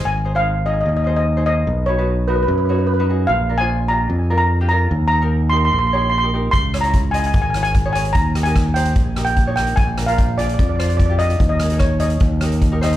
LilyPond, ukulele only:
\new Staff \with { instrumentName = "Ukulele" } { \time 4/4 \key aes \major \tempo 4 = 148 r8 <ees' aes' c''>16 <ees' aes' c''>8 r16 <ees' aes' ees''>8 r8 <ees' aes' c''>8 r16 <ees' aes' c''>16 <ees' aes' c''>8 | r8 <dis' fis' b'>16 <dis' fis' b'>8 r16 <dis' fis' bes'>8 r8 <dis' fis' des''>8 r16 <dis' fis' b'>16 <dis' fis' aes'>8 | r8 <d' f' bes'>16 <d' f' c''>8 r16 <d' f' g'>8 r8 <d' f' bes'>8 r16 <d' f' g'>16 <d' f' bes'>8 | r8 <ees' g' bes'>16 <ees' g' bes'>8 r16 <ees' g' bes'>8 r8 <ees' g' des''>8 r16 <ees' g' bes'>16 <ees' g' bes'>8 |
r8 <fes' aes' des''>16 <fes' aes' des''>8 r16 <fes' aes' ees''>8 r8 <fes' aes' des''>8 r16 <fes' aes' des''>16 <fes' aes' des''>8 | r8 <ees' g' bes'>16 <ees' g' bes'>8 r16 <ees' g' c''>8 r8 <ees' g' bes'>8 r16 <ees' g' des''>16 <ees' g' bes'>8 | r8 <d' f' bes'>16 <d' f' bes'>8 r16 <d' f' aes'>8 r8 <d' f' c''>8 r16 <d' f' g'>16 <d' f' g'>8 | r8 <ees' aes' bes'>16 <ees' aes' bes'>8 r16 <ees' aes' des''>8 r8 <ees' g' bes'>8 r16 <ees' g' bes'>16 <ees' g' c''>8 | }